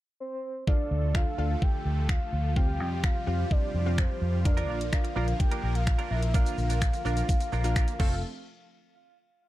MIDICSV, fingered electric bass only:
0, 0, Header, 1, 2, 480
1, 0, Start_track
1, 0, Tempo, 472441
1, 686, Time_signature, 4, 2, 24, 8
1, 9638, End_track
2, 0, Start_track
2, 0, Title_t, "Fingered electric bass"
2, 0, Program_c, 0, 33
2, 926, Note_on_c, 0, 38, 87
2, 1247, Note_off_c, 0, 38, 0
2, 1405, Note_on_c, 0, 38, 88
2, 1566, Note_off_c, 0, 38, 0
2, 1884, Note_on_c, 0, 38, 84
2, 2206, Note_off_c, 0, 38, 0
2, 2365, Note_on_c, 0, 38, 102
2, 2845, Note_off_c, 0, 38, 0
2, 2845, Note_on_c, 0, 41, 82
2, 3166, Note_off_c, 0, 41, 0
2, 3325, Note_on_c, 0, 41, 89
2, 3486, Note_off_c, 0, 41, 0
2, 3804, Note_on_c, 0, 41, 87
2, 4126, Note_off_c, 0, 41, 0
2, 4284, Note_on_c, 0, 41, 98
2, 4764, Note_off_c, 0, 41, 0
2, 4764, Note_on_c, 0, 34, 87
2, 5086, Note_off_c, 0, 34, 0
2, 5245, Note_on_c, 0, 34, 90
2, 5406, Note_off_c, 0, 34, 0
2, 5725, Note_on_c, 0, 34, 84
2, 6047, Note_off_c, 0, 34, 0
2, 6206, Note_on_c, 0, 34, 98
2, 6528, Note_off_c, 0, 34, 0
2, 6684, Note_on_c, 0, 34, 89
2, 7006, Note_off_c, 0, 34, 0
2, 7165, Note_on_c, 0, 34, 91
2, 7326, Note_off_c, 0, 34, 0
2, 7647, Note_on_c, 0, 34, 86
2, 7968, Note_off_c, 0, 34, 0
2, 8125, Note_on_c, 0, 29, 97
2, 8348, Note_off_c, 0, 29, 0
2, 9638, End_track
0, 0, End_of_file